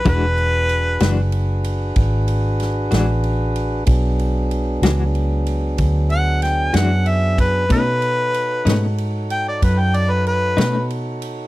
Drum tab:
RD |xxxxxxxxxxxx|xxxxxxxxxxxx|xxxxxxxxxxxx|
SD |---o----oo--|---o----oo--|---o-----o--|
BD |o-----o-----|o-----o----o|o-----o-----|